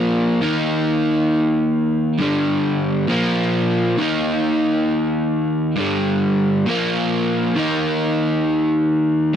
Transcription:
Already playing: A#2 F3 A#3
0.42 D#3 A#3 D#4
2.19 G2 D3 G3
3.08 A#2 F3 A#3
3.98 D#3 A#3 D#4
5.76 G2 D3
5.80 G3
6.66 A#2 F3 A#3
7.55 D#3 A#3 D#4

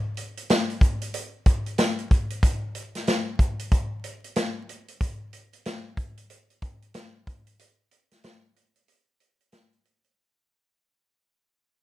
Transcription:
0.17 closed hi-hat
0.37 closed hi-hat
0.50 snare, closed hi-hat
0.70 closed hi-hat
0.81 kick, closed hi-hat
1.02 closed hi-hat
1.14 closed hi-hat
1.46 kick, closed hi-hat
1.66 closed hi-hat
1.78 snare, closed hi-hat
1.99 closed hi-hat
2.11 kick, closed hi-hat
2.30 closed hi-hat
2.43 kick, closed hi-hat
2.75 closed hi-hat
2.95 snare, closed hi-hat
3.07 snare, closed hi-hat
3.39 kick, closed hi-hat
3.59 closed hi-hat
3.72 kick, closed hi-hat
4.04 closed hi-hat
4.24 closed hi-hat
4.36 snare, closed hi-hat
4.69 closed hi-hat
4.88 closed hi-hat
5.01 kick, closed hi-hat
5.33 closed hi-hat
5.53 closed hi-hat
5.65 snare, closed hi-hat
5.97 kick, closed hi-hat
6.17 closed hi-hat
6.30 closed hi-hat
6.50 closed hi-hat
6.62 kick, closed hi-hat
6.82 closed hi-hat
6.94 snare, closed hi-hat
7.27 kick, closed hi-hat
7.47 closed hi-hat
7.59 closed hi-hat
7.91 closed hi-hat
8.11 snare, closed hi-hat
8.24 snare, closed hi-hat
8.56 closed hi-hat
8.76 closed hi-hat
8.88 closed hi-hat
9.20 closed hi-hat
9.40 closed hi-hat
9.52 snare, closed hi-hat
9.73 closed hi-hat
9.85 closed hi-hat
10.04 closed hi-hat

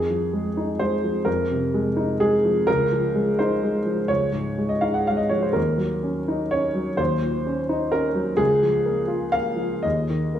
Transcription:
Already playing: F2 G#4
0.10 F3
0.33 G#3
0.57 D#4
0.79 G#3 C5
1.04 F3
1.25 F2 A#4
1.51 C3
1.74 G#3
1.97 D#4
2.20 G#3 G#4
2.45 F3
2.67 C#2 A#4
2.92 F3
3.15 G#3
3.39 D#4 C5
3.63 G#3
3.86 F3
4.08 C#2 C#5
4.32 G#2
4.58 G#3
4.69 D#5
4.81 D#4 F5
4.94 F#5
5.07 G#3 F5
5.17 D#5
5.29 F3 C#5
5.42 C5
5.53 D#2 A#4
5.78 F#3
6.03 C#4
6.28 D#4
6.51 C#4 C#5
6.74 F#3
6.97 D#2 C5
7.22 A#2
7.47 C#4
7.69 D#4
7.92 C#4 A#4
8.14 F#3
8.37 C#2 G#4
8.62 F3
8.86 A#3
9.07 F4
9.32 A#3 F5
9.56 F3
9.83 D#2 D#5
10.10 D#3
10.35 A#3

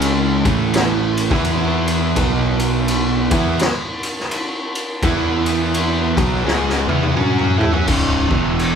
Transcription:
Already playing: C#2 C#3 G#3 C#4
0.01 ride
0.45 A1 A2 E3 A3, kick, ride
0.74 snare, ride
1.17 ride
1.30 E2 E3 B3 E4, kick, snare
1.44 ride
1.87 ride
2.16 B1 B2 F#3 B3, kick, ride
2.59 ride
2.88 ride
3.31 E2 E3 B3 E4, kick, ride
3.59 snare, ride
4.03 ride
4.19 snare
4.31 ride
4.75 ride
5.02 E2 E3 B3 E4, kick, ride
5.46 ride
5.74 ride
6.17 B1 B2 F#3 B3, kick, ride
6.44 C#2 C#3 G#3 C#4, snare
6.69 snare
6.87 E2 E3 B3 E4, high tom
7.03 high tom
7.15 F#2 F#3 C#4 F#4, mid tom
7.39 mid tom
7.58 A2 A3 E4, floor tom
7.73 F#2 F#3 C#4, floor tom
7.86 C#1 C#2 G#2 C#3, kick, crash
8.29 E1 E2 B2 E3, kick
8.59 crash

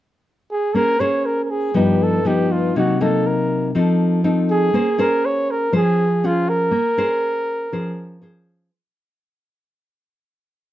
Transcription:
0.51 G#4
0.74 A#3 C#4 G#4 A#4 C5
1.00 C#4 G#4 C5 C#5
1.26 A#4
1.44 A#4
1.50 G#4
1.74 G2 F3 B3 D#4 G4
2.03 A4
2.25 F3 B3 D#4 G4
2.52 F4
2.76 C3 F#3 A#3 D#4 F#4
3.01 F#3 A#3 D#4 A4
3.27 A#4
3.75 F3 C4 D#4 A4
4.24 C4 D#4 A4
4.51 G#4
4.74 A#3 C#4 G#4 C5
4.98 C#4 G#4 A#4 C5
5.25 C#5
5.51 A#4
5.72 F3 C#4 G#4 C5
6.24 C#4 F4 G#4 C5
6.49 A#4
6.71 A#3
6.97 C#4 G#4 C5
7.73 F3 C#4 G#4 C5
8.22 C#4 G#4 C5

